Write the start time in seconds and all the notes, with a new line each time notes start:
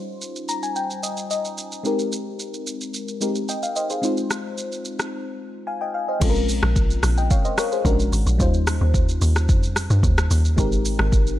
Already playing: G3 C#4 D#4 F4 C5
0.21 shaker
0.36 shaker
0.49 A#5, shaker
0.63 G#5, shaker
0.76 G5, shaker
0.90 shaker
1.03 D#5, shaker
1.17 shaker
1.31 D#5, shaker
1.45 shaker
1.58 shaker
1.72 shaker
1.83 G#3 C4 D#4 G4 A#4, shaker
1.99 shaker
2.12 shaker
2.39 shaker
2.54 shaker
2.67 shaker
2.81 shaker
2.94 shaker
3.08 shaker
3.21 G#3 C4 D#4 G4 A#4, shaker
3.35 shaker
3.49 D#5 G5, shaker
3.63 F5, shaker
3.76 C5 D#5, shaker
3.90 G#4 C5, shaker
4.02 G#3 C4 D#4 F4 C5, shaker
4.17 shaker
4.30 cross-stick, shaker
4.58 shaker
4.72 shaker
4.85 shaker
4.99 cross-stick, shaker
5.67 F5 G#5
5.81 D#5 G5
5.94 F5
6.08 C5 D#5
6.20 A#1 G#3 C4 C#4 F4 A4, kick, crash, shaker
6.30 A#4
6.36 shaker
6.49 open hi-hat, shaker
6.63 A#1, cross-stick
6.76 kick, shaker
6.90 shaker
7.03 A#1, cross-stick, open hi-hat, shaker
7.17 D#5 G5, shaker
7.30 C#5 F5, kick, shaker
7.45 C5 D#5, shaker
7.58 A#4 C#5, cross-stick, open hi-hat, shaker
7.72 G#4 C5, shaker
7.85 A#1 G#3 C#4 D4 F#4 A#4, kick, shaker
8.00 shaker
8.12 G#1, open hi-hat, shaker
8.27 A#1, shaker
8.38 D#2 G3 C#4 D#4 F4 C5, kick, shaker
8.54 shaker
8.67 cross-stick, open hi-hat, shaker
8.81 D#2
8.94 kick, shaker
9.09 shaker
9.21 D#2, open hi-hat, shaker
9.36 cross-stick, shaker
9.49 F2, kick, shaker
9.63 shaker
9.76 cross-stick, open hi-hat, shaker
9.90 G2, shaker
10.03 D#2, kick, shaker
10.18 cross-stick, shaker
10.31 D#2, open hi-hat, shaker
10.45 shaker
10.56 G#1 G#3 C4 D#4 G4 A#4, kick, shaker
10.72 shaker
10.85 open hi-hat, shaker
10.99 G#1, cross-stick
11.12 kick, shaker
11.27 shaker